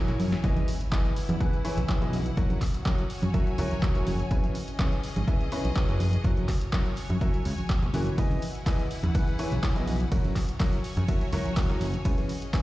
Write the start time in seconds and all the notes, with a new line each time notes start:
Already playing: F#4 C#5 G#5, swell
0.08 A#1 F#3 E4 F#4 A#4 C#5, snare, closed hi-hat, tambourine
0.19 F#2, open hi-hat, tambourine, high conga
0.32 snare, closed hi-hat, tambourine
0.44 E1 E3 E4 G#4 B4 D#5, kick, closed hi-hat, tambourine, impact
0.57 closed hi-hat, tambourine, high conga
0.68 open hi-hat, tambourine
0.79 closed hi-hat, tambourine
0.92 E3 E4 G#4 B4 D#5, kick, clap, closed hi-hat, tambourine, high conga
1.05 closed hi-hat, tambourine
1.10 F#5
1.16 open hi-hat, tambourine
1.29 E2, cross-stick, closed hi-hat, tambourine, high conga
1.40 E3 E4 G#4 B4 F#5, kick, closed hi-hat, tambourine
1.53 closed hi-hat, tambourine
1.65 E3 E4 G#4 B4 C#5, open hi-hat, tambourine
1.77 B1, closed hi-hat, tambourine, high conga
1.89 E3 E4 G#4 B4 C#5, kick, clap, closed hi-hat, tambourine
2.01 B1 E3 E4 G#4 B4 D#5, cross-stick, closed hi-hat, tambourine
2.13 open hi-hat, tambourine, high conga
2.26 closed hi-hat, tambourine
2.37 F#1 F#3 E4 F#4 A#4 C#5, kick, closed hi-hat, tambourine
2.50 closed hi-hat, tambourine, high conga
2.61 kick, clap, open hi-hat, tambourine
2.73 C#5, closed hi-hat, tambourine
2.86 F#3 E4 F#4 A#4 C#5, kick, clap, closed hi-hat, tambourine, high conga
2.98 closed hi-hat, tambourine
3.10 G#5, open hi-hat, tambourine
3.22 F#2, cross-stick, closed hi-hat, tambourine, high conga
3.34 F#3 E4 F#4 A#4 E5, kick, closed hi-hat, tambourine
3.47 closed hi-hat, tambourine
3.58 C#2 F#3 E4 F#4 A#4 C#5, open hi-hat, tambourine
3.71 closed hi-hat, tambourine, high conga
3.82 F#3 E4 F#4 A#4 C#5, kick, clap, closed hi-hat, tambourine
3.95 E1 F#3 E4 F#4 A#4 C#5, cross-stick, closed hi-hat, tambourine
4.07 F#1, open hi-hat, tambourine, high conga
4.19 closed hi-hat, tambourine
4.31 C#2 C#3 C#4 E4 G#4 B4 C#5, kick, closed hi-hat, tambourine
4.43 closed hi-hat, tambourine, high conga
4.50 D#5
4.55 open hi-hat, tambourine
4.68 closed hi-hat, tambourine
4.72 G#4
4.79 C#3 E4 G#4 B4 C#5, kick, clap, closed hi-hat, tambourine, high conga
4.92 closed hi-hat, tambourine
5.03 open hi-hat, tambourine
5.16 G#1, cross-stick, closed hi-hat, tambourine, high conga
5.28 C#3 E4 G#4 B4 E5, kick, closed hi-hat, tambourine
5.41 closed hi-hat, tambourine
5.52 C#3 E4 G#4 B4 C#5, open hi-hat, tambourine
5.64 B1, closed hi-hat, tambourine, high conga
5.76 F#3 E4 G#4 B4 C#5, kick, clap, closed hi-hat, tambourine
5.89 F#1 F#3 E4 G#4 B4 C#5, cross-stick, closed hi-hat, tambourine
6.00 F#4, open hi-hat, tambourine, high conga
6.12 C#5, closed hi-hat, tambourine
6.24 F#1 F#3 E4 F#4 A#4 C#5, kick, closed hi-hat, tambourine
6.36 closed hi-hat, tambourine, high conga
6.49 kick, clap, open hi-hat, tambourine
6.61 closed hi-hat, tambourine
6.73 F#3 E4 F#4 A#4 C#5, kick, clap, closed hi-hat, tambourine, high conga
6.82 G#5, closed hi-hat, tambourine
6.96 open hi-hat, tambourine
7.10 F#2, cross-stick, closed hi-hat, tambourine, high conga
7.21 F#3 E4 F#4 A#4 E5, kick, closed hi-hat, tambourine
7.34 closed hi-hat, tambourine
7.45 C#2, open hi-hat, tambourine
7.58 closed hi-hat, tambourine, high conga
7.70 kick, clap, closed hi-hat, tambourine
7.82 E1, cross-stick, closed hi-hat, tambourine
7.94 F#1 E3 E4 F#4 A#4 C#5, open hi-hat, tambourine, high conga
8.06 closed hi-hat, tambourine
8.18 E1 E3 E4 G#4 B4 D#5, kick, closed hi-hat, ride, tambourine
8.31 closed hi-hat, tambourine, high conga
8.42 open hi-hat, tambourine
8.49 F#5
8.55 closed hi-hat, tambourine
8.59 B4
8.66 E3 E4 G#4 B4 D#5, kick, clap, closed hi-hat, ride, tambourine, high conga
8.79 closed hi-hat, tambourine
8.91 open hi-hat, tambourine
9.03 E2, cross-stick, closed hi-hat, tambourine, high conga
9.14 E3 E4 G#4 B4 F#5, kick, closed hi-hat, ride, tambourine
9.27 closed hi-hat, tambourine
9.38 E3 E4 G#4 B4 C#5, open hi-hat, tambourine
9.51 B1, closed hi-hat, tambourine, high conga
9.63 E3 E4 G#4 B4 C#5, kick, clap, closed hi-hat, ride, tambourine
9.76 B1 E3 E4 G#4 B4 D#5, cross-stick, closed hi-hat, tambourine
9.86 open hi-hat, tambourine, high conga
10.00 closed hi-hat, tambourine
10.12 F#1 F#3 E4 F#4 A#4 C#5, kick, closed hi-hat, ride, tambourine
10.24 closed hi-hat, tambourine, high conga
10.36 kick, clap, open hi-hat, tambourine
10.48 C#5, closed hi-hat, tambourine
10.56 G#5, tambourine
10.60 F#3 E4 F#4 A#4 C#5, kick, clap, closed hi-hat, ride, high conga
10.73 closed hi-hat, tambourine
10.84 open hi-hat, tambourine
10.97 F#2, cross-stick, closed hi-hat, tambourine, high conga
11.08 F#3 E4 F#4 A#4 E5, kick, closed hi-hat, ride, tambourine
11.21 closed hi-hat, tambourine
11.33 C#2 F#3 E4 F#4 A#4 C#5, open hi-hat, tambourine
11.45 closed hi-hat, tambourine, high conga
11.57 F#3 E4 F#4 A#4 C#5, kick, clap, closed hi-hat, ride, tambourine
11.69 E1 F#3 E4 F#4 A#4 C#5, cross-stick, closed hi-hat, tambourine
11.81 F#1, open hi-hat, tambourine, high conga
11.93 closed hi-hat, tambourine
12.04 C#2 C#3 C#4 E4 G#4 B4 C#5, kick, closed hi-hat, ride, tambourine
12.17 closed hi-hat, tambourine, high conga
12.23 D#5
12.29 open hi-hat, tambourine
12.35 G#4
12.42 closed hi-hat, tambourine
12.53 C#3 E4 G#4 B4 C#5, kick, clap, closed hi-hat, ride, tambourine, high conga